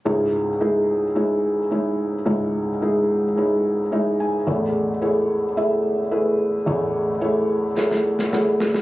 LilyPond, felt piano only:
<<
  \new Staff \with { instrumentName = "Felt piano" } { \time 4/4 \key cis \minor \tempo 4 = 109 << { r1 | r2. e''8 gis''8 | r1 | r2. fis''4 | } \\ { <gis dis' e' cis''>4 <gis dis' e' gis'>4 <gis dis' e' cis''>4 <gis dis' e' cis''>4 | <gis dis' e' cis''>4 <gis dis' e' gis'>4 <gis dis' e' cis''>4 <gis dis' e' cis''>4 | <a e' gis' cis''>4 <a e' gis' cis''>4 <a e' gis' e''>4 <a e' gis' b'>4 | <a e' gis' cis''>4 <a e' gis' cis''>4 <a e' gis' cis''>4 <a e' gis' cis''>4 | } >> }
  \new Staff \with { instrumentName = "Felt piano" } { \clef bass \time 4/4 \key cis \minor <cis, gis,>1 | <cis, gis,>1 | <a,, e,>1 | <a,, e,>1 | }
>>